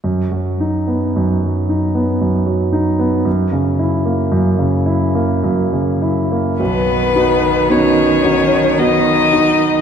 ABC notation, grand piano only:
X:1
M:3/4
L:1/16
Q:1/4=55
K:B
V:1 name="Grand piano"
F,, F, D B, F,, F, D B, F,, F, D B, | F,, C, E A, F,, C, E A, F,, C, E A, | B,,,2 [DF]2 [B,DF]2 [DF]2 [B,DF]2 [DF]2 |]